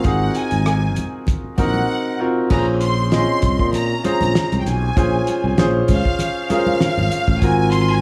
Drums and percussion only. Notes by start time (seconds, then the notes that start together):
0.04 kick, closed hi-hat, muted conga
0.35 closed hi-hat
0.51 closed hi-hat
0.66 cross-stick, closed hi-hat
0.96 closed hi-hat, muted conga, high conga, low conga
1.27 kick, closed hi-hat, muted conga, low conga
1.58 kick, closed hi-hat, muted conga, high conga
1.74 high conga
2.50 kick, crash, muted conga
2.81 closed hi-hat
3.12 snare, closed hi-hat, muted conga
3.42 kick, closed hi-hat, muted conga, high conga, low conga
3.59 kick
3.73 closed hi-hat, muted conga, low conga
4.04 closed hi-hat, high conga
4.21 closed hi-hat, high conga
4.35 snare, closed hi-hat
4.52 closed hi-hat, high conga
4.66 snare, closed hi-hat, muted conga
4.97 kick, closed hi-hat, muted conga
5.27 closed hi-hat, muted conga
5.58 snare, closed hi-hat
5.88 kick, closed hi-hat, high conga, low conga
6.05 kick
6.19 closed hi-hat, muted conga, low conga
6.50 closed hi-hat, high conga
6.67 high conga
6.81 snare, closed hi-hat, muted conga
6.99 high conga
7.11 closed hi-hat, muted conga
7.28 kick
7.42 kick, closed hi-hat
7.72 closed hi-hat, muted conga